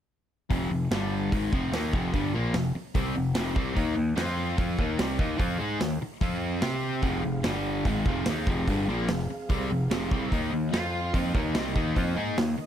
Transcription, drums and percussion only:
0.51 kick medium
0.51 open hi-hat medium
0.91 snare loud
0.91 open hi-hat medium
1.32 kick loud
1.32 open hi-hat medium
1.53 kick loud
1.73 snare loud
1.73 open hi-hat medium
1.93 kick loud
2.14 kick medium
2.14 open hi-hat soft
2.54 snare loud
2.54 open hi-hat medium
2.95 kick loud
2.95 open hi-hat medium
3.35 snare loud
3.35 open hi-hat medium
3.56 kick loud
3.77 kick medium
3.77 open hi-hat soft
4.17 snare loud
4.17 open hi-hat medium
4.27 snare soft
4.58 kick loud
4.58 open hi-hat medium
4.79 kick loud
4.99 snare loud
4.99 open hi-hat medium
5.19 kick loud
5.39 kick loud
5.39 open hi-hat medium
5.80 snare loud
5.80 open hi-hat medium
6.21 kick loud
6.21 open hi-hat medium
6.62 snare loud
6.62 open hi-hat medium
7.02 kick medium
7.02 open hi-hat soft
7.44 snare loud
7.44 open hi-hat medium
7.85 kick loud
7.85 open hi-hat medium
8.06 kick loud
8.26 snare loud
8.26 open hi-hat medium
8.47 kick loud
8.68 kick medium
8.68 open hi-hat medium
9.08 snare loud
9.08 open hi-hat medium
9.19 snare soft
9.50 kick loud
9.50 open hi-hat medium
9.91 snare loud
9.91 open hi-hat medium
10.11 kick loud
10.32 kick medium
10.32 open hi-hat soft
10.73 snare loud
10.73 open hi-hat medium
11.14 kick loud
11.14 open hi-hat medium
11.35 kick loud
11.55 snare loud
11.55 open hi-hat medium
11.76 kick medium
11.96 kick medium
11.96 open hi-hat medium
12.38 snare loud
12.38 open hi-hat medium

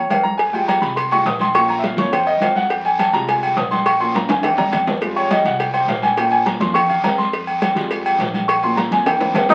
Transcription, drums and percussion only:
0.10 cowbell medium
0.10 high conga medium
0.10 low timbale medium
0.10 low agogo loud
0.25 high conga medium
0.39 cowbell loud
0.39 long guiro medium
0.54 high conga soft
0.54 low agogo medium
0.68 cowbell medium
0.68 high conga loud
0.68 low timbale medium
0.68 low agogo loud
0.68 short guiro medium
0.83 cowbell medium
0.83 short guiro medium
0.97 cowbell loud
0.97 high conga soft
0.97 low agogo medium
0.97 long guiro medium
1.12 high conga soft
1.12 low agogo loud
1.25 cowbell medium
1.25 high conga soft
1.25 low timbale medium
1.25 short guiro medium
1.40 high conga medium
1.40 low agogo medium
1.40 short guiro medium
1.54 cowbell loud
1.54 high conga soft
1.54 low agogo loud
1.54 long guiro medium
1.69 high conga soft
1.69 low agogo medium
1.83 cowbell medium
1.83 high conga medium
1.83 low timbale medium
1.83 short guiro medium
1.98 cowbell medium
1.98 high conga loud
1.98 short guiro medium
2.13 cowbell loud
2.13 high conga soft
2.13 low conga medium
2.13 low agogo loud
2.13 long guiro medium
2.27 high conga soft
2.27 low agogo medium
2.41 cowbell medium
2.41 high conga medium
2.41 low timbale medium
2.41 low agogo loud
2.41 short guiro medium
2.56 high conga medium
2.56 short guiro medium
2.70 cowbell loud
2.70 long guiro medium
2.85 high conga soft
2.85 low agogo medium
2.99 cowbell medium
2.99 high conga medium
2.99 low timbale medium
2.99 low agogo loud
2.99 short guiro medium
3.13 cowbell medium
3.13 short guiro medium
3.28 cowbell loud
3.28 high conga soft
3.28 low agogo medium
3.28 long guiro medium
3.43 high conga soft
3.43 low agogo loud
3.56 cowbell medium
3.56 high conga soft
3.56 low timbale medium
3.56 short guiro medium
3.71 high conga medium
3.71 low agogo medium
3.71 short guiro medium
3.86 cowbell loud
3.86 low agogo loud
3.86 long guiro medium
4.01 high conga soft
4.01 low agogo medium
4.15 cowbell medium
4.15 high conga loud
4.15 high timbale medium
4.15 short guiro medium
4.29 cowbell medium
4.29 high bongo medium
4.29 high conga loud
4.29 high timbale medium
4.29 short guiro medium
4.43 cowbell loud
4.43 high bongo medium
4.43 high conga soft
4.43 low conga medium
4.43 high timbale loud
4.43 low agogo loud
4.43 long guiro medium
4.58 low bongo loud
4.58 high conga medium
4.58 low agogo medium
4.68 high conga medium
4.68 low agogo loud
4.68 short guiro medium
4.73 cowbell medium
4.73 low bongo medium
4.87 low bongo medium
4.87 low conga medium
4.87 low timbale medium
4.87 short guiro medium
5.01 cowbell loud
5.01 high conga soft
5.01 long guiro medium
5.17 high conga soft
5.17 low agogo medium
5.31 cowbell medium
5.31 high conga loud
5.31 low timbale medium
5.31 low agogo loud
5.31 short guiro medium
5.45 cowbell medium
5.45 short guiro medium
5.60 cowbell loud
5.60 high conga soft
5.60 low agogo medium
5.60 long guiro medium
5.74 high conga soft
5.74 low agogo loud
5.88 cowbell medium
5.88 high conga soft
5.88 low timbale medium
5.88 short guiro medium
6.02 high conga medium
6.02 low agogo medium
6.02 short guiro medium
6.17 cowbell loud
6.17 low agogo loud
6.17 long guiro medium
6.32 high conga soft
6.32 low agogo medium
6.46 cowbell medium
6.46 high conga loud
6.46 low timbale medium
6.46 short guiro medium
6.61 cowbell medium
6.61 high conga loud
6.61 short guiro medium
6.75 cowbell loud
6.75 high conga soft
6.75 low conga medium
6.75 low agogo loud
6.75 long guiro medium
6.90 high conga soft
6.90 low conga medium
6.90 low agogo medium
7.04 cowbell medium
7.04 high conga medium
7.04 low timbale medium
7.04 low agogo loud
7.04 short guiro medium
7.19 high conga medium
7.19 short guiro medium
7.33 cowbell loud
7.33 long guiro medium
7.47 high conga soft
7.47 low agogo medium
7.62 cowbell medium
7.62 high conga loud
7.62 low timbale medium
7.62 low agogo loud
7.62 short guiro medium
7.77 cowbell medium
7.77 short guiro medium
7.91 cowbell loud
7.91 high conga soft
7.91 low agogo medium
7.91 long guiro medium
8.05 high conga soft
8.05 low agogo loud
8.19 cowbell medium
8.19 high conga soft
8.19 low timbale medium
8.19 short guiro medium
8.34 high conga medium
8.34 low agogo medium
8.34 short guiro medium
8.49 cowbell loud
8.49 low agogo loud
8.49 long guiro medium
8.63 high conga soft
8.63 low agogo medium
8.77 cowbell medium
8.77 high conga loud
8.77 low timbale medium
8.77 short guiro medium
8.92 cowbell medium
8.92 high conga loud
8.92 short guiro medium
9.06 cowbell loud
9.06 high conga soft
9.06 low conga medium
9.06 high timbale loud
9.06 low agogo loud
9.06 long guiro medium
9.20 high bongo medium
9.20 high conga soft
9.20 high timbale medium
9.20 low agogo medium
9.35 cowbell medium
9.35 high conga medium
9.35 low timbale loud
9.35 low agogo loud
9.35 short guiro medium
9.49 low bongo medium
9.49 high conga medium
9.49 low timbale loud
9.49 short guiro medium

